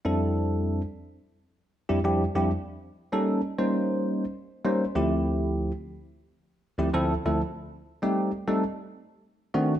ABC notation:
X:1
M:4/4
L:1/16
Q:1/4=98
K:F
V:1 name="Tine electric piano"
[F,,G,CDEA]4- [F,,G,CDEA] z6 z [F,,G,CDEG] [F,,G,CDEG] z [F,,G,CDEG] | z4 [G,B,_D_EA]2 z [G,B,DEc]4 z3 [G,B,DEc] z | [D,,F,A,CEG]4- [D,,F,A,CEG] z6 z [D,,F,A,CEG] [D,,F,A,CEA] z [D,,F,A,CEA] | z4 [G,A,C_EG]2 z [G,A,CEA] z6 [_E,A,CD^F] z |]